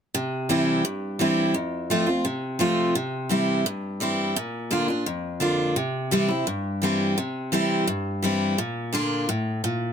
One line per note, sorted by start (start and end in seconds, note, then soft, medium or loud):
0.14 0.81 C3 medium
0.49 0.83 E3 medium
0.49 0.83 G3 medium
0.49 0.83 C4 medium
0.49 0.84 E4 medium
0.85 1.51 G2 medium
1.19 1.53 E3 medium
1.19 1.53 G3 medium
1.19 1.54 C4 medium
1.19 1.54 E4 medium
1.54 2.21 F2 medium
1.90 2.07 F3 medium
1.90 2.08 A3 medium
1.90 2.08 C4 medium
1.90 2.05 F4 medium
2.06 2.25 C4 soft
2.06 2.24 F4 medium
2.25 2.92 C3 medium
2.59 2.93 F3 medium
2.59 2.94 A3 medium
2.59 2.94 C4 medium
2.59 2.94 F4 loud
2.95 3.62 C3 medium
3.29 3.63 E3 medium
3.29 3.64 G3 medium
3.29 3.64 C4 medium
3.29 3.64 E4 medium
3.66 4.33 G2 medium
4.00 4.34 E3 medium
4.00 4.34 G3 medium
4.00 4.35 C4 medium
4.00 4.35 E4 medium
4.36 5.03 A#2 loud
4.71 4.88 D3 medium
4.71 4.88 A#3 medium
4.71 4.89 D4 medium
4.71 4.87 F4 medium
4.88 5.06 D4 soft
4.88 5.05 F4 medium
5.06 5.73 F2 medium
5.40 5.74 D3 medium
5.40 5.75 A#3 medium
5.40 5.75 D4 medium
5.40 5.75 F4 medium
5.76 6.43 C3 medium
6.11 6.29 E3 medium
6.11 6.29 G3 medium
6.11 6.29 C4 medium
6.11 6.27 E4 loud
6.28 6.47 C4 soft
6.28 6.46 E4 medium
6.47 7.14 G2 medium
6.82 7.15 E3 medium
6.82 7.16 G3 medium
6.82 7.16 C4 medium
6.82 7.17 E4 medium
7.18 7.84 C3 medium
7.52 7.86 E3 medium
7.52 7.86 G3 medium
7.52 7.86 C4 medium
7.52 7.87 E4 loud
7.87 8.54 G2 medium
8.22 8.56 E3 medium
8.22 8.57 G3 medium
8.22 8.57 C4 medium
8.22 8.57 E4 loud
8.58 9.25 A#2 medium
8.93 9.26 D3 medium
8.93 9.27 A#3 medium
8.93 9.27 D4 loud
8.93 9.27 F4 medium
9.29 9.62 A2 medium
9.64 9.93 A#2 medium